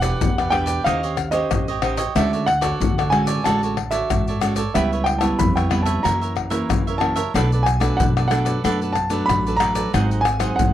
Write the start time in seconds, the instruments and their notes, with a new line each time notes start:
Already playing: upright bass E1, nylon-string guitar E3, grand piano F#5
0.01 nylon-string guitar D4 G4 B4, cavaquinho G4 B4 D5, pandeiro, tamborim, shaker, surdo
0.21 upright bass E2, nylon-string guitar B2, pandeiro, shaker, surdo
0.38 cavaquinho G4 B4 D5, pandeiro, tamborim, shaker
0.50 nylon-string guitar D4 G4 B4, cavaquinho E4 G4 B4 D5, grand piano G5, pandeiro, tamborim
0.66 cavaquinho G4 B4 D5, pandeiro, shaker, surdo
0.84 upright bass D#2, nylon-string guitar D#3 C#4 G4 C5, cavaquinho D#4 G4 C#5 D#5, grand piano F5, pandeiro, tamborim, shaker, surdo
1.03 cavaquinho G4 C#5 D#5, pandeiro, shaker
1.17 muted cavaquinho stroke, pandeiro, tamborim, shaker, surdo
1.31 nylon-string guitar C#4 G4 C5, cavaquinho G4 C#5 D#5, grand piano D#5, pandeiro, shaker
1.51 upright bass A1, pandeiro, tamborim, shaker, surdo
1.68 cavaquinho G4 C#5 D#5, pandeiro, shaker
1.82 nylon-string guitar C#4 G4 C5, cavaquinho D#4 G4 C#5 D#5, pandeiro, tamborim, surdo
1.97 cavaquinho G4 C#5 D#5, pandeiro, shaker, surdo
2.15 upright bass D2, nylon-string guitar D3 G#3 C#4 F#4, cavaquinho F#4 A4 C#5 D5, grand piano E5, pandeiro, tamborim, shaker, surdo
2.33 cavaquinho A4 C#5 D5, pandeiro, shaker
2.46 grand piano F#5, muted cavaquinho stroke, pandeiro, tamborim
2.61 nylon-string guitar F#4, cavaquinho A4 C#5 D5, pandeiro, tamborim, shaker, surdo
2.80 nylon-string guitar A2, upright bass D3, pandeiro, shaker, surdo
2.98 cavaquinho A4 C#5 D5, pandeiro, tamborim, shaker
3.10 nylon-string guitar G#3 C#4 F#4, cavaquinho F#4 A4 C#5, grand piano G#5, pandeiro, tamborim
3.14 cavaquinho D5
3.27 cavaquinho A4 C#5 D5, pandeiro, shaker, surdo
3.44 upright bass A1, nylon-string guitar D3 G#3 C#4 F#4, cavaquinho F#4 A4 C#5 D5, grand piano A5, pandeiro, tamborim, shaker, surdo
3.63 cavaquinho A4 C#5 D5, pandeiro, shaker
3.77 muted cavaquinho stroke, pandeiro, tamborim, surdo
3.91 nylon-string guitar F#4, cavaquinho A4 C#5 D5, grand piano E5, pandeiro, shaker
4.10 upright bass G#2, pandeiro, tamborim, shaker, surdo
4.27 cavaquinho A4 C#5 D5, pandeiro, shaker
4.41 nylon-string guitar G#3 C#4 F#4, cavaquinho F#4 A4 C#5 D5, pandeiro, tamborim, shaker
4.56 cavaquinho A4 C#5 D5, pandeiro, shaker, surdo
4.74 upright bass C#2, nylon-string guitar C#3 G3 B3 E4, cavaquinho G4 B4 C#5 E5, grand piano E5, pandeiro, tamborim, shaker, surdo
4.92 cavaquinho B4 C#5 E5, pandeiro, shaker
5.04 grand piano G5, muted cavaquinho stroke, pandeiro, tamborim
5.18 nylon-string guitar G3 B3 E4, cavaquinho B4 C#5 E5, grand piano A5, pandeiro, tamborim, shaker, surdo
5.39 upright bass F2, nylon-string guitar C#3, grand piano B5, pandeiro, shaker, surdo
5.56 cavaquinho B4 C#5 E5, grand piano G5, pandeiro, tamborim, shaker
5.70 nylon-string guitar G3 B3 E4, cavaquinho G4 B4 C#5 E5, pandeiro, tamborim
5.82 cavaquinho E5, grand piano A5, pandeiro, shaker, surdo
5.87 cavaquinho B4 C#5
6.03 nylon-string guitar F#2 E3 A#3 C#4, upright bass F#2, cavaquinho F#4 A#4 C#5 E5, grand piano A#5, pandeiro, tamborim, shaker, surdo
6.21 cavaquinho A#4 C#5 E5, pandeiro, shaker
6.36 muted cavaquinho stroke, pandeiro, tamborim, surdo
6.50 nylon-string guitar E3 A#3 C#4, cavaquinho A#4 C#5 E5, pandeiro, shaker
6.69 upright bass F#2, nylon-string guitar C#3, pandeiro, tamborim, shaker, surdo
6.87 cavaquinho A#4 C#5 E5, pandeiro, shaker
6.98 nylon-string guitar E3 A#3 C#4, cavaquinho F#4 A#4 C#5 E5, grand piano A5, pandeiro, tamborim
7.16 cavaquinho A#4 C#5 E5, pandeiro, shaker, surdo
7.34 upright bass B1, nylon-string guitar B2 F#3 A3 D4, cavaquinho D4 A4 B4 D5, pandeiro, tamborim, shaker, surdo
7.52 cavaquinho A4 B4 D5, pandeiro, shaker
7.63 grand piano G#5, pandeiro, tamborim, shaker
7.67 muted cavaquinho stroke
7.80 nylon-string guitar F#3 A3 D4, cavaquinho A4 B4 D5, pandeiro, tamborim, shaker, surdo
7.97 nylon-string guitar F#2, upright bass B2, grand piano F#5, pandeiro, shaker, surdo
8.17 cavaquinho A4 B4 D5, pandeiro, tamborim, shaker
8.28 nylon-string guitar F#3 A3 D4, cavaquinho D4 A4, grand piano F#5, pandeiro, tamborim, shaker
8.32 cavaquinho B4 D5
8.45 cavaquinho A4 B4 D5, pandeiro, shaker, surdo
8.64 upright bass F#2, nylon-string guitar B2 F#3 A3 D4, cavaquinho D4 A4 B4 D5, pandeiro, tamborim, shaker, surdo
8.81 cavaquinho A4 B4 D5, pandeiro, shaker
8.93 grand piano A5, muted cavaquinho stroke, pandeiro, tamborim, shaker, surdo
9.10 nylon-string guitar F#3 A3 D4, cavaquinho A4 B4 D5, pandeiro, shaker
9.26 upright bass A1, nylon-string guitar F#2, grand piano B5, pandeiro, tamborim, shaker, surdo
9.46 cavaquinho A4 B4 D5, pandeiro, shaker
9.57 nylon-string guitar F#3 A3, grand piano A#5, pandeiro, tamborim, shaker
9.61 cavaquinho D4 A4 B4 D5, nylon-string guitar D4
9.75 cavaquinho A4 B4 D5, pandeiro, shaker, surdo
9.93 upright bass G#1, nylon-string guitar G#2 F#3 C4 D#4, cavaquinho F#4 G#4 C5 F#5, pandeiro, tamborim, shaker, surdo
10.11 cavaquinho G#4 C5 F#5, pandeiro, shaker
10.21 grand piano G#5, muted cavaquinho stroke
10.25 pandeiro, tamborim, shaker
10.39 nylon-string guitar F#3 C4 D#4, cavaquinho G#4 C5 F#5, pandeiro, tamborim, shaker, surdo
10.56 upright bass G#2, nylon-string guitar D#3, grand piano F#5, pandeiro, shaker, surdo